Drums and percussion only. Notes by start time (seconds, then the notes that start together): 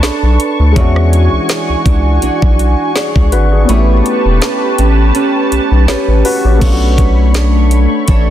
0.03 snare, closed hi-hat
0.40 closed hi-hat
0.76 kick, closed hi-hat
0.96 cross-stick
1.13 closed hi-hat
1.49 snare, closed hi-hat
1.86 kick, closed hi-hat
2.22 closed hi-hat
2.42 kick
2.59 closed hi-hat
2.96 snare, closed hi-hat
3.16 kick
3.32 closed hi-hat
3.69 closed hi-hat
4.06 closed hi-hat
4.42 snare, closed hi-hat
4.78 closed hi-hat
5.15 closed hi-hat
5.52 closed hi-hat
5.88 snare, closed hi-hat
6.25 open hi-hat
6.61 kick, closed hi-hat, crash
6.98 kick, closed hi-hat
7.34 snare, closed hi-hat
7.71 closed hi-hat
8.08 kick, closed hi-hat